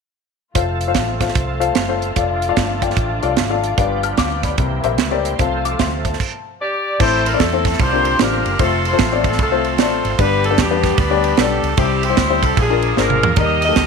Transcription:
0.54 F1 F3 A3 C4 F4 A4 C5 F5, kick, closed hi-hat
0.81 closed hi-hat
0.88 F4 A4 C5 F5
0.95 A1, kick, snare, closed hi-hat
1.20 F4 A4 C5 F5, kick, snare, closed hi-hat
1.28 snare
1.35 C2, kick, closed hi-hat
1.60 F4 A4 C5 F5, closed hi-hat
1.75 F#1 C5, snare, closed hi-hat
1.89 F4 A4 C5 F5
2.01 A4, closed hi-hat
2.16 F1 F3 A3 D4 F4 A4 D5 F5, kick, closed hi-hat
2.42 closed hi-hat
2.49 F4 A4 D5 F5
2.57 G1, kick, snare, closed hi-hat
2.81 F4 A4 D5 G5, kick, closed hi-hat
2.90 snare
2.97 A1, kick, closed hi-hat
3.22 C2 F4 G4 A4 D5 F5, closed hi-hat
3.37 G#1 A4, snare, closed hi-hat
3.50 F4 A4 D5 F5
3.64 D5, closed hi-hat
3.77 G1 G2 F3 G3 B3 D4 G4 B4 D5 F5, kick, closed hi-hat
4.03 A5 F6, closed hi-hat
4.17 D2 F5 D6, kick, snare, closed hi-hat
4.43 D5 B5, kick, snare, closed hi-hat
4.57 C2 C3 E3 A#3 C4 E4 G4, kick, closed hi-hat
4.84 A#1 G4 A#4 C5 E5, closed hi-hat
4.98 C#2 D5, snare, closed hi-hat
5.11 G4 A#4 C5 D5
5.24 C5, closed hi-hat
5.38 C2 C3 F3 A3 C4 F4 A4 C5 F5, kick, closed hi-hat
5.65 F5 D6, closed hi-hat
5.79 D2 E5 C6, kick, snare, closed hi-hat
6.05 C5 A5, kick, closed hi-hat
6.13 snare
6.20 kick, crash
6.61 G4 D5
6.99 A1 A2 A3 C4 E4 A4 C5, kick, crash
7.26 A#4, ride
7.33 A3 C4 E4 A4 D5
7.40 E2 C4 E4 A4, kick, snare, ride
7.53 A3 C4 E4 A4 C5
7.65 kick, snare, ride
7.73 snare
7.79 C2 C3 D3 G3 A#3 C4 F4 G4 C5, kick, ride
7.92 C4 D4 F4 G4 A#4
8.05 ride
8.19 A1 C4 D4 F4 G4 A#4 C5, snare, ride
8.46 F#1, ride
8.59 F1 A3 C4 E4 F4 A4 C5, kick, ride
8.64 F4
8.85 F4 A4 C5, ride
8.93 A3 C4 F4 A4 C5
8.99 A1, kick, snare, ride
9.12 A3 C4 F4 A4 D5
9.24 kick, ride
9.28 A4, snare
9.39 C2 C4 F4 A4, kick, ride
9.51 A3 C4 F4 A4 C5
9.64 ride
9.78 A1 A3 C4 F4 A4 C5 D5, snare, ride
10.05 G#1, ride
10.18 G1 G2 G3 B3 D4 G4 B4, kick, ride
10.44 A4, ride
10.51 G3 B3 D4 G4 B4
10.58 E2 B3 D4 G4, kick, snare, ride
10.71 G3 B3 D4 G4 B4
10.84 kick, snare, ride
10.98 D2 D4 G4 B4, kick, ride
11.10 G3 B3 D4 G4 D5
11.24 ride
11.37 B1 G3 B3 D4 G4 A4 D5, snare, ride
11.63 C#2, ride
11.77 C2 C3 G3 C4 D4 E4 G4 C5, kick, ride
11.82 E4
12.03 E4 G4 C5, ride
12.09 G3 C4 E4 G4 C5
12.17 D2, kick, snare, ride
12.30 G3 C4 E4 G4 C5
12.43 C2 A4, kick, ride
12.57 A#1 A#2 F3 G#3 A#3 C4 D4 F4 G#4, kick, ride
12.63 D4
12.70 A#3 D4 F4 G#4 A#4
12.82 ride
12.97 G#1 A#3 D4 F4 G#4 A#4 C5, snare
13.10 mid tom
13.23 E2, floor tom
13.36 D#2 D#3 G3 A#3 D#4 G4 A#4 D#5, kick, ride
13.62 G4 A#4 D#5, ride
13.68 G3 A#3 D#4 G4 A4
13.76 D2, kick, snare, ride

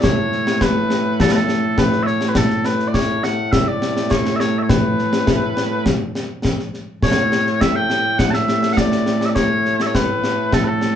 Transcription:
Already playing: A2 A3
0.04 C#5, concert bass drum, snare
0.32 snare
0.47 snare
0.61 B4, concert bass drum, snare
0.90 snare
1.20 A4, concert bass drum, snare
1.31 B4
1.36 A4
1.49 snare
1.78 B4, concert bass drum, snare
1.93 snare
2.03 C#5 E5, snare
2.21 snare
2.28 B4
2.35 A4, concert bass drum, snare
2.50 snare
2.65 B4, snare
2.79 snare
2.88 D5
2.94 C#5, concert bass drum, snare
3.24 F#5, snare
3.52 E5, concert bass drum, snare
3.68 D5
3.82 snare
3.97 snare
4.10 C#5, concert bass drum, snare
4.26 snare
4.36 E5
4.40 C#5, snare
4.58 E5
4.63 C#5
4.69 B4, concert bass drum, snare
4.99 snare
5.13 snare
5.27 concert bass drum, snare
5.57 snare
5.86 concert bass drum, snare
6.15 snare
6.45 concert bass drum, snare
6.59 snare
6.74 snare
7.03 A2 A3 C#5, concert bass drum, snare
7.17 snare
7.32 snare
7.47 snare
7.61 E5, concert bass drum, snare
7.76 G5
7.90 snare
8.19 F#5, concert bass drum, snare
8.31 E5 A5, snare
8.48 snare
8.63 snare
8.73 F#5
8.77 D5, concert bass drum, snare
8.92 snare
9.06 snare
9.21 snare
9.25 D5 E5
9.35 C#5, concert bass drum, snare
9.65 snare
9.80 E5, snare
9.87 C#5
9.95 B4, concert bass drum, snare
10.24 snare
10.53 A4, concert bass drum, snare
10.64 A4 B4
10.81 snare

